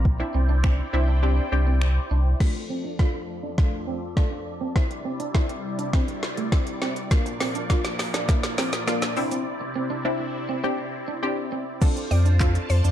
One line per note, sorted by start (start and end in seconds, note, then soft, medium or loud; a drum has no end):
0.00 0.22 A#1 loud
0.05 kick loud
0.20 0.53 C4 loud
0.20 0.53 D4 medium
0.20 0.53 E4 loud
0.20 muted clean electric guitar stroke soft
0.35 0.81 C2 medium
0.35 0.45 C4 medium
0.49 0.60 D4 medium
0.64 0.86 C4 loud
0.64 0.75 C4 medium
0.64 0.86 D4 medium
0.64 0.86 E4 loud
0.64 finger snap loud
0.64 kick loud
0.79 muted clean electric guitar stroke soft
0.93 1.40 C2 medium
0.93 1.15 C4 loud
0.93 1.15 D4 medium
0.93 1.15 E4 loud
1.08 1.19 D4 medium
1.23 1.45 C4 medium
1.23 1.33 D4 medium
1.23 1.45 D4 medium
1.23 1.45 G4 medium
1.38 muted clean electric guitar stroke soft
1.52 1.99 C2 medium
1.52 2.18 C4 medium
1.52 2.18 D4 medium
1.52 2.18 G4 medium
1.67 1.78 C4 medium
1.81 finger snap loud
2.11 2.34 C2 loud
2.11 2.22 D4 medium
2.40 4.73 F2 medium
2.40 4.73 F3 medium
2.40 2.84 A3 medium
2.40 2.84 D4 medium
2.40 2.84 F4 medium
2.40 kick loud
2.40 snare medium
2.40 crash medium
2.55 muted clean electric guitar stroke soft
2.70 2.80 C4 medium
2.84 2.95 D4 medium
2.99 3.43 A3 medium
2.99 3.43 D4 medium
2.99 3.10 F4 medium
2.99 3.43 F4 loud
2.99 kick loud
2.99 snare medium
3.14 muted clean electric guitar stroke soft
3.43 3.54 D4 medium
3.58 4.02 A3 medium
3.58 4.02 D4 medium
3.58 4.02 F4 loud
3.58 kick loud
3.58 snare medium
3.87 3.98 C4 medium
4.17 4.61 A3 medium
4.17 4.27 D4 medium
4.17 4.61 D4 medium
4.17 4.61 F4 loud
4.17 kick loud
4.17 snare medium
4.31 muted clean electric guitar stroke soft
4.61 4.72 C4 medium
4.75 7.09 C3 medium
4.75 7.09 G3 medium
4.75 5.19 C4 medium
4.75 5.20 D4 medium
4.75 7.09 E4 medium
4.75 5.20 E4 medium
4.75 kick loud
4.75 snare medium
4.90 muted clean electric guitar stroke soft
4.90 closed hi-hat soft
5.05 5.16 C4 medium
5.20 5.30 D4 medium
5.20 closed hi-hat medium
5.34 5.78 C4 medium
5.34 5.78 D4 medium
5.34 5.45 E4 medium
5.34 5.78 E4 medium
5.34 kick loud
5.34 snare medium
5.49 muted clean electric guitar stroke soft
5.49 closed hi-hat medium
5.79 5.89 D4 medium
5.79 closed hi-hat medium
5.93 6.37 C4 medium
5.93 6.04 C4 medium
5.93 6.37 D4 medium
5.93 6.37 E4 loud
5.93 kick loud
5.93 snare medium
6.08 muted clean electric guitar stroke soft
6.08 closed hi-hat medium
6.23 snare medium
6.37 6.48 A3 medium
6.37 closed hi-hat medium
6.52 6.96 C4 medium
6.52 6.96 D4 medium
6.52 6.96 E4 loud
6.52 kick loud
6.52 snare medium
6.67 closed hi-hat medium
6.82 6.92 C4 medium
6.82 snare medium
6.96 closed hi-hat medium
7.11 7.55 A#3 medium
7.11 7.55 D4 medium
7.11 7.55 F4 medium
7.11 kick loud
7.11 snare loud
7.11 shaker medium
7.26 muted clean electric guitar stroke soft
7.26 closed hi-hat soft
7.26 shaker soft
7.40 7.51 C4 medium
7.40 snare loud
7.40 open hi-hat medium
7.40 shaker soft
7.55 7.66 D4 medium
7.55 closed hi-hat medium
7.55 shaker medium
7.70 8.14 A#3 medium
7.70 8.14 D4 medium
7.70 7.81 F4 medium
7.70 8.14 F4 loud
7.70 kick loud
7.70 snare loud
7.70 shaker medium
7.85 muted clean electric guitar stroke soft
7.85 snare loud
7.85 closed hi-hat medium
7.85 shaker medium
7.99 snare loud
7.99 open hi-hat medium
7.99 shaker medium
8.14 8.25 D4 medium
8.14 snare loud
8.14 closed hi-hat medium
8.14 shaker medium
8.28 8.72 A#3 loud
8.28 8.73 D4 medium
8.28 8.73 E4 loud
8.28 kick loud
8.28 snare loud
8.28 shaker medium
8.43 snare loud
8.43 closed hi-hat medium
8.43 shaker medium
8.58 8.69 C4 medium
8.58 snare loud
8.58 open hi-hat medium
8.58 shaker medium
8.73 snare loud
8.73 closed hi-hat medium
8.73 shaker medium
8.87 9.17 A#3 medium
8.87 8.98 D4 medium
8.87 9.16 D4 medium
8.87 9.17 F4 loud
8.87 snare loud
8.87 shaker medium
9.02 muted clean electric guitar stroke soft
9.02 snare loud
9.02 closed hi-hat medium
9.02 shaker medium
9.17 11.79 C3 medium
9.17 9.87 C4 medium
9.17 11.79 C4 medium
9.17 9.87 D4 medium
9.17 11.79 E4 medium
9.17 9.88 E4 loud
9.17 open hi-hat medium
9.17 shaker medium
9.31 9.42 C4 medium
9.31 closed hi-hat medium
9.31 shaker medium
9.61 muted clean electric guitar stroke soft
9.76 9.86 C4 medium
9.90 10.01 D4 medium
10.05 10.49 C4 medium
10.05 10.49 D4 medium
10.05 10.16 E4 medium
10.05 10.49 E4 loud
10.20 muted clean electric guitar stroke soft
10.49 10.60 C4 medium
10.64 11.08 C4 medium
10.64 10.74 C4 medium
10.64 11.08 D4 medium
10.64 11.08 G4 loud
10.78 muted clean electric guitar stroke soft
11.08 11.19 D4 medium
11.23 11.66 C4 loud
11.23 11.67 D4 medium
11.23 11.67 G4 loud
11.52 11.63 C4 medium
11.81 12.25 C4 medium
11.81 12.25 D4 medium
11.81 12.91 F4 medium
11.81 12.25 F4 medium
11.81 12.26 A4 loud
11.81 12.91 C5 medium
11.81 12.91 D5 medium
11.81 12.91 A5 medium
11.81 kick loud
11.81 closed hi-hat medium
11.81 crash loud
11.81 shaker medium
11.96 muted clean electric guitar stroke soft
11.96 closed hi-hat soft
11.96 shaker soft
12.11 12.58 F2 medium
12.11 12.22 C4 medium
12.11 12.24 D5 medium
12.11 open hi-hat medium
12.11 shaker medium
12.26 12.36 D4 medium
12.26 closed hi-hat soft
12.26 shaker medium
12.40 12.84 C4 loud
12.40 12.84 D4 medium
12.40 12.51 F4 medium
12.40 12.84 F4 medium
12.40 12.84 A4 loud
12.40 kick loud
12.40 clap loud
12.40 closed hi-hat medium
12.40 shaker medium
12.55 muted clean electric guitar stroke soft
12.55 closed hi-hat medium
12.55 shaker medium
12.70 12.81 F2 medium
12.70 12.83 C5 medium
12.70 open hi-hat medium
12.70 shaker medium
12.84 12.91 F2 medium
12.84 12.91 D4 medium
12.84 closed hi-hat medium
12.84 shaker medium